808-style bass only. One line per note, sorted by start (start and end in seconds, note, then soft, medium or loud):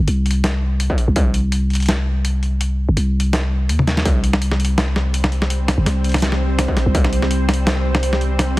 0.08 0.89 C2 medium
1.08 1.16 C2 medium
1.16 2.87 C2 loud
2.89 2.96 G1 loud
2.97 3.71 C2 medium
3.69 4.04 D#2 medium
4.05 5.77 C2 loud
5.78 5.85 G1 loud
5.86 6.67 C2 medium
6.86 6.94 C2 loud
6.95 8.60 C2 loud